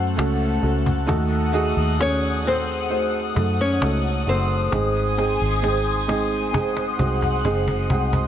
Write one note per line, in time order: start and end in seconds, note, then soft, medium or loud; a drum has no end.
0.00 0.15 F#2 medium
0.00 0.16 A3 medium
0.00 4.68 A3 medium
0.00 0.17 C#4 medium
0.00 0.17 F#4 medium
0.00 0.18 A4 medium
0.00 1.10 C5 medium
0.00 1.05 F#5 medium
0.16 0.60 C#2 medium
0.16 0.59 A3 loud
0.16 0.60 C#4 medium
0.16 0.61 F#4 medium
0.16 0.61 A4 loud
0.16 cajon slap loud
0.61 1.05 C#2 medium
0.61 1.05 A3 medium
0.61 1.06 C#4 medium
0.61 1.06 F#4 medium
0.61 1.06 A4 medium
0.61 cajon slap soft
0.86 cajon bass medium
1.06 1.73 D#2 loud
1.06 2.40 D#3 medium
1.06 1.51 A3 loud
1.06 1.51 D#4 loud
1.06 1.51 F#4 loud
1.06 1.52 A4 loud
1.06 4.69 F#5 medium
1.06 8.27 D#6 medium
1.06 cajon bass loud
1.52 1.96 A3 loud
1.52 1.97 D#4 medium
1.52 1.97 F#4 loud
1.52 1.97 G#4 loud
1.52 cajon slap soft
1.76 3.32 D#2 medium
1.98 2.42 A3 medium
1.98 2.42 C#4 medium
1.98 2.42 D#4 medium
1.98 2.42 F#4 medium
1.98 2.43 A4 medium
1.98 cajon slap medium
2.02 2.48 C#5 loud
2.44 2.87 A3 medium
2.44 3.56 C4 medium
2.44 2.88 D#4 medium
2.44 2.88 F#4 medium
2.44 2.89 A4 medium
2.44 cajon slap soft
2.48 3.61 C5 medium
2.89 3.33 A3 medium
2.89 3.33 D#4 medium
2.89 3.33 F#4 medium
2.89 3.34 C5 medium
2.89 cajon slap soft
3.35 3.78 F#2 medium
3.35 3.79 A3 medium
3.35 3.79 D#4 medium
3.35 3.79 F#4 medium
3.35 3.79 A4 medium
3.35 cajon bass medium
3.61 4.24 C#4 medium
3.61 4.29 C#5 medium
3.80 4.24 C#2 medium
3.80 4.24 A3 medium
3.80 4.24 D#4 medium
3.80 4.25 F#4 medium
3.80 4.25 A4 medium
3.80 cajon slap loud
4.26 4.69 F#1 medium
4.26 4.69 A3 medium
4.26 4.70 D#4 medium
4.26 4.70 F#4 medium
4.26 4.70 A4 medium
4.26 6.97 C5 medium
4.26 cajon slap soft
4.30 6.97 C4 medium
4.71 5.36 G#1 loud
4.71 6.05 G#2 medium
4.71 6.05 D#3 medium
4.71 5.15 G#3 medium
4.71 5.15 C4 medium
4.71 5.16 D#4 medium
4.71 5.16 G#4 loud
4.71 8.27 C5 medium
4.71 6.52 G#5 medium
4.71 cajon bass loud
4.71 cajon slap soft
5.17 5.60 G#3 medium
5.17 5.61 C4 medium
5.17 5.61 D#4 medium
5.17 5.61 G#4 loud
5.17 cajon slap soft
5.17 cajon slap medium
5.41 6.96 G#1 medium
5.41 cajon slap soft
5.62 6.06 G#3 medium
5.62 6.06 C4 medium
5.62 6.06 D#4 medium
5.62 6.07 G#4 medium
5.62 cajon slap medium
5.62 cajon slap soft
6.07 6.51 G#3 medium
6.07 6.51 C4 medium
6.07 6.52 D#4 medium
6.07 6.52 G#4 medium
6.07 cajon slap medium
6.52 6.96 G#3 medium
6.52 6.97 C4 medium
6.52 6.97 D#4 medium
6.52 6.97 G#4 medium
6.52 8.27 F#5 medium
6.52 cajon bass medium
6.52 cajon slap medium
6.77 cajon slap medium
6.98 7.42 C2 medium
6.98 7.42 G#3 medium
6.98 7.42 C4 medium
6.98 7.43 D#4 medium
6.98 7.43 F#4 medium
6.98 7.42 C5 medium
6.98 cajon bass medium
7.22 cajon bass medium
7.44 7.87 F#1 medium
7.44 7.88 G#3 medium
7.44 7.88 C4 medium
7.44 7.88 D#4 medium
7.44 7.89 G#4 loud
7.44 7.87 D#5 medium
7.44 cajon bass medium
7.68 cajon bass medium
7.90 8.27 C2 medium
7.90 8.27 G#3 medium
7.90 8.27 C4 medium
7.90 8.27 D#4 medium
7.90 8.27 G#4 medium
7.90 8.27 F#5 medium
7.90 cajon bass loud
8.13 cajon bass medium